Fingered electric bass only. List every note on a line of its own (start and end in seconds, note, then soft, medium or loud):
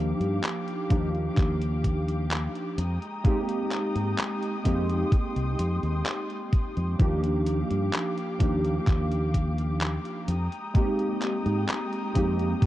0.00 0.12 D#2 medium
0.20 0.39 G2 medium
0.90 1.28 D#2 medium
1.37 2.47 D#2 medium
2.78 2.97 F2 medium
3.96 4.14 G#2 medium
4.65 5.03 F2 medium
5.36 5.54 C2 medium
5.59 5.78 F2 medium
5.83 6.01 D#2 medium
6.77 6.95 F2 medium
7.00 7.62 D#2 medium
7.71 7.89 G2 medium
8.40 8.78 D#2 medium
8.87 9.97 D#2 medium
10.28 10.47 F2 medium
11.46 11.64 G#2 medium
12.15 12.53 F2 medium